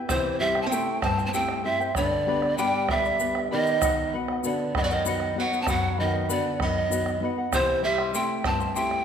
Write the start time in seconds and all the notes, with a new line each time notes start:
0.08 C3 E3 E4 G4 C5 E5 G5, bombo rim, bombo low, shaker
0.39 G3 C4 E4 G4 C5 E5 G5
0.55 E4 C5 G5, bombo rim
0.62 A5
0.66 C4 G5
0.71 A3 C4 E4 G4 C5 E5 G5, shaker
0.87 bombo rim
1.02 G2 C4 E4 C5 E5 G5 A5, bombo rim, bombo low
1.18 E4 C5 G5, bombo rim, shaker
1.26 C4 A5
1.33 A3 C4 E4 G4 C5 E5 G5, shaker
1.48 bombo rim
1.64 G3 C4 E4 G4 C5 E5 G5
1.80 E4 C5 G5, shaker
1.95 G2 D3 B4 D5 G5 B5, bombo rim, bombo low, shaker
2.26 B3 D4 G4 B4 D5 G5 B5
2.42 B4 D5 B5, bombo rim
2.58 G3 B3 D4 G4 B4 D5 G5 B5, shaker
2.74 bombo rim
2.89 D3 G3 B4 D5 E5 G5 B5, bombo rim, bombo low
3.05 B4 D5 B5, bombo rim, shaker
3.20 B3 G4 B4 D5 G5 B5, shaker
3.35 bombo rim
3.51 D#3 B3 G4 B4 D5 D#5 G5 B5
3.67 B4 D5 B5, shaker
3.82 B2 B4 D#5 F#5, bombo rim, bombo low, shaker
4.13 B3 F#4 B4 D#5 F#5
4.28 D#5 F#5, bombo rim
4.43 D3 B3 F#4 B4 D5 F#5, shaker
4.60 bombo rim
4.74 F#2 D#3 B4 D#5 F#5, bombo rim, bombo low
4.83 F#3 D5
4.90 D#3 D#5 F#5, bombo rim, shaker
5.05 B3 D#4 F#4 B4 D#5 F#5, shaker
5.09 D#3
5.20 bombo rim
5.36 F#3 B3 D#4 F#4 B4 D#5 F#5
5.53 D#5 F#5, shaker
5.62 C4 A5
5.67 F#2 F#3 B4 D#5 F#5, bombo rim, bombo low, shaker
5.83 bombo rim
5.98 D#3 B3 F#4 B4 D#5 F#5, bombo rim
6.14 D#5 F#5
6.28 D3 B3 F#4 B4 D5 F#5, shaker
6.59 F#2 D#3 B4 D#5 F#5, bombo rim, bombo low
6.76 D#5 F#5, bombo rim
6.89 B3 D#4 F#4 B4 D#5 F#5, bombo rim, shaker
7.06 bombo rim, shaker
7.20 B3 D#4 F#4 B4 D#5
7.25 F#5
7.38 D#5 F#5
7.51 C3 E3 E4 G4 C5 E5, bombo rim, bombo low, shaker
7.55 C6
7.82 G3 C4 E4 G4 C5 E5 C6
7.98 E4 E5 C6, bombo rim
8.13 A3 C4 E4 G4 C5 E5 G5 C6, shaker
8.30 bombo rim
8.44 G2 C4 E4 C5 E5 A5 C6, bombo rim, bombo low
8.60 E4 E5 C6, bombo rim, shaker
8.75 A3 C4 E4 G4 C5 E5 G5 C6, shaker
8.91 bombo rim